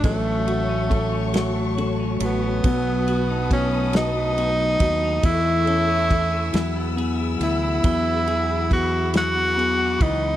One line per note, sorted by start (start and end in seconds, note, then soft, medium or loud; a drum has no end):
0.00 2.17 A1 loud
0.00 0.26 A3 medium
0.00 0.13 D4 medium
0.00 5.18 F#4 medium
0.00 0.13 G4 medium
0.00 2.61 C#5 medium
0.00 2.61 A5 medium
0.00 2.61 C#6 medium
0.00 kick loud
0.00 ride medium
0.04 1.33 F#3 medium
0.04 0.88 A3 medium
0.04 1.74 A3 medium
0.26 0.90 A3 soft
0.47 1.77 F#4 medium
0.47 1.31 F#4 medium
0.47 ride soft
0.69 1.11 C#4 medium
0.90 1.76 A3 medium
0.90 1.55 A3 medium
0.90 kick medium
0.90 ride medium
1.12 1.98 C#4 medium
1.33 2.64 F#3 medium
1.33 2.20 F#4 medium
1.33 snare loud
1.33 ride medium
1.56 2.21 A3 medium
1.78 2.62 A3 medium
1.78 3.08 F#4 medium
1.78 ride soft
2.00 2.41 C#4 medium
2.20 2.62 A1 medium
2.20 2.86 A3 medium
2.20 2.63 F#4 medium
2.20 ride medium
2.25 3.49 B3 medium
2.42 2.73 C#4 medium
2.64 4.76 B1 loud
2.64 3.94 F#3 medium
2.64 3.50 B3 medium
2.64 5.21 B4 medium
2.64 5.21 A5 medium
2.64 5.21 D#6 medium
2.64 kick loud
2.64 ride medium
2.86 3.52 A3 medium
3.08 4.37 F#4 medium
3.08 3.93 F#4 medium
3.08 ride soft
3.30 3.72 D#4 medium
3.51 4.16 A3 medium
3.51 4.36 B3 medium
3.51 3.92 C#4 medium
3.51 kick medium
3.51 ride medium
3.74 4.58 D#4 medium
3.93 5.24 F#3 medium
3.93 5.27 D#4 loud
3.93 4.79 F#4 medium
3.93 snare loud
3.93 ride medium
4.17 4.80 A3 medium
4.37 5.21 B3 medium
4.37 5.32 F#4 medium
4.37 ride soft
4.60 5.02 D#4 medium
4.80 5.21 D#2 medium
4.80 5.32 A3 medium
4.80 5.22 F#4 medium
4.80 kick medium
4.80 ride medium
5.03 5.33 D#4 medium
5.23 6.49 E2 loud
5.23 6.09 E3 medium
5.23 6.53 E3 medium
5.23 6.98 E4 loud
5.23 6.52 A4 medium
5.23 6.52 E5 medium
5.23 6.52 C#6 medium
5.23 9.10 E6 medium
5.23 kick loud
5.23 ride medium
5.46 6.09 A3 medium
5.66 6.50 C#4 medium
5.66 6.63 A4 medium
5.66 ride soft
5.89 6.31 C#4 medium
6.10 6.51 E3 medium
6.10 6.62 A3 medium
6.10 kick medium
6.10 ride soft
6.32 6.62 C#4 medium
6.53 7.36 E2 medium
6.53 7.38 E3 medium
6.53 7.84 F#3 medium
6.53 10.37 G#4 medium
6.53 10.37 F#5 medium
6.53 10.37 B5 medium
6.53 snare medium
6.53 ride medium
6.76 7.41 B3 medium
6.96 7.82 B3 soft
6.96 8.27 G#4 medium
6.96 ride soft
7.19 7.61 E4 medium
7.40 7.81 D2 medium
7.40 8.26 E3 soft
7.40 8.06 B3 soft
7.40 8.68 E4 loud
7.40 ride medium
7.62 8.49 E4 medium
7.83 9.96 E2 loud
7.83 9.14 F#3 medium
7.83 8.69 B3 medium
7.83 kick loud
7.83 ride medium
8.06 8.71 B3 medium
8.27 9.12 E3 medium
8.27 9.56 G#4 medium
8.27 ride soft
8.50 8.91 E4 medium
8.70 9.55 B3 medium
8.70 9.35 B3 medium
8.70 9.12 F#4 medium
8.70 kick medium
8.70 ride soft
8.92 9.78 E4 medium
9.14 9.99 E3 medium
9.14 10.37 F#3 medium
9.14 10.04 F#4 loud
9.14 10.37 D6 medium
9.14 snare medium
9.14 ride medium
9.36 10.01 B3 medium
9.56 10.37 B3 medium
9.56 10.37 G#4 medium
9.56 ride soft
9.79 10.22 E4 medium
10.00 10.37 C#2 medium
10.00 10.37 E3 medium
10.00 10.37 B3 medium
10.00 10.37 D#4 loud
10.00 kick medium
10.00 ride medium